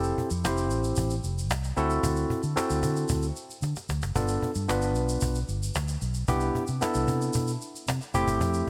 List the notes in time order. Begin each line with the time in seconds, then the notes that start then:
Already playing: F1 C4 E4 G4 A4
0.03 cajon slap, shaker
0.18 cajon bass
0.30 F2, cajon slap, shaker
0.44 F1 C4 E4 G4 C5, cajon slap, shaker
0.57 shaker
0.70 A1, cajon slap, shaker
0.84 cajon slap, shaker
0.96 A1, cajon bass, shaker
1.10 shaker
1.23 F1, cajon slap, shaker
1.37 cajon slap, shaker
1.50 C2, cajon slap, shaker
1.64 shaker
1.77 D2 C4 E4 F#4 A4, shaker
1.90 cajon slap, shaker
2.03 D2, cajon bass, shaker
2.16 shaker
2.30 cajon bass
2.43 D3, cajon slap, shaker
2.56 C4 E4 F#4 A4, cajon slap, shaker
2.69 D2, cajon slap, shaker
2.83 D3, cajon bass, shaker
2.96 shaker
3.08 D2, cajon bass, shaker
3.22 cajon slap, shaker
3.36 cajon slap, shaker
3.49 cajon slap, shaker
3.62 D3, cajon slap, shaker
3.76 cajon slap, shaker
3.89 D2, cajon slap, shaker
4.02 F#1, cajon slap, shaker
4.15 G1 B3 D4 F4 A4, cajon bass, shaker
4.28 cajon slap, shaker
4.42 cajon bass
4.55 G2, cajon slap, shaker
4.68 G1 B3 D4 F4 B4, cajon slap, shaker
4.82 shaker
4.95 B1, cajon slap, shaker
5.09 cajon slap, shaker
5.21 B1, cajon bass, shaker
5.35 shaker
5.48 G1, cajon slap, shaker
5.62 cajon slap, shaker
5.74 D2, cajon slap, shaker
5.88 shaker
6.02 B1, cajon slap, shaker
6.14 cajon slap, shaker
6.28 C2 B3 D4 E4 G4, cajon bass, shaker
6.40 cajon slap, shaker
6.55 cajon bass
6.67 C3, cajon slap, shaker
6.81 B3 D4 E4 A4, cajon slap, shaker
6.94 C2, shaker
7.08 C3, cajon bass, shaker
7.21 cajon slap, shaker
7.33 B2, cajon bass, shaker
7.48 shaker
7.61 cajon slap, shaker
7.74 cajon slap, shaker
7.88 C3, cajon slap, shaker
8.02 shaker
8.14 F1 A3 C4 E4 G4, cajon bass, shaker
8.27 G1, cajon bass, shaker
8.41 F2, cajon bass, shaker
8.54 cajon slap, shaker